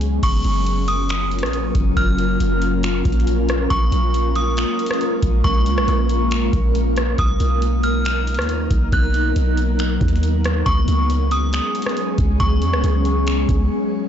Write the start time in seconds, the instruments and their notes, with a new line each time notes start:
Already playing: 808-style bass C#2, ambient pad F#3 G#3 B3 C#4 G#4
0.01 closed hi-hat
0.22 808-style bass F#1, ambient pad F#3 A#3 C#4 F4 A#4, synth bell C#6, kick, closed hi-hat, crash
0.44 808-style bass F#1, closed hi-hat
0.66 closed hi-hat
0.88 synth bell D#6, closed hi-hat
1.09 finger snap, closed hi-hat
1.31 closed hi-hat
1.39 808-style bass A#1, closed hi-hat
1.43 cross-stick, closed hi-hat
1.53 closed hi-hat
1.75 808-style bass F#1, kick, closed hi-hat
1.97 808-style bass F#1, synth bell F6, kick, closed hi-hat
2.19 closed hi-hat
2.40 808-style bass F#1, closed hi-hat
2.62 closed hi-hat
2.83 finger snap, closed hi-hat
3.05 808-style bass A#1, kick, closed hi-hat
3.12 closed hi-hat
3.20 closed hi-hat
3.27 closed hi-hat
3.49 cross-stick, closed hi-hat
3.70 808-style bass A#1, ambient pad G#3, synth bell C#6, kick, closed hi-hat
3.92 808-style bass A#1, closed hi-hat
4.14 closed hi-hat
4.35 synth bell D#6, closed hi-hat
4.57 finger snap, closed hi-hat
4.79 closed hi-hat
4.86 closed hi-hat
4.91 cross-stick, closed hi-hat
5.01 closed hi-hat
5.23 808-style bass A#1, kick, closed hi-hat
5.44 808-style bass A#1, synth bell C#6, kick, closed hi-hat
5.66 808-style bass C#2, closed hi-hat
5.77 808-style bass A#1, cross-stick
5.88 808-style bass A#1, closed hi-hat
6.09 closed hi-hat
6.31 finger snap, closed hi-hat
6.53 808-style bass A#1, kick, closed hi-hat
6.75 closed hi-hat
6.96 cross-stick, closed hi-hat
7.18 808-style bass B1, ambient pad F#3 B3 D#4, synth bell D#6, kick, closed hi-hat
7.40 808-style bass B1, closed hi-hat
7.62 closed hi-hat
7.83 synth bell F6, closed hi-hat
8.05 finger snap, closed hi-hat
8.27 closed hi-hat
8.34 808-style bass D#2, closed hi-hat
8.39 cross-stick, closed hi-hat
8.49 closed hi-hat
8.71 808-style bass B1, kick, closed hi-hat
8.92 808-style bass B1, synth bell F#6, kick, closed hi-hat
9.14 closed hi-hat
9.36 808-style bass B1, closed hi-hat
9.57 closed hi-hat
9.79 finger snap, closed hi-hat
10.01 808-style bass D#2, kick, closed hi-hat
10.08 closed hi-hat
10.16 closed hi-hat
10.23 closed hi-hat
10.44 cross-stick, closed hi-hat
10.66 808-style bass C#2, ambient pad G#3 C#4 G#4, synth bell C#6, kick, closed hi-hat
10.88 808-style bass C#2, closed hi-hat
11.10 closed hi-hat
11.31 synth bell D#6, closed hi-hat
11.53 finger snap, closed hi-hat
11.75 closed hi-hat
11.82 closed hi-hat
11.86 cross-stick, closed hi-hat
11.97 closed hi-hat
12.18 808-style bass C#2, kick, closed hi-hat
12.40 808-style bass C#2, synth bell C#6, kick, closed hi-hat
12.62 808-style bass F2, closed hi-hat
12.73 808-style bass C#2, cross-stick
12.84 808-style bass C#2, closed hi-hat
13.05 closed hi-hat
13.27 finger snap, closed hi-hat
13.49 808-style bass C#2, kick, closed hi-hat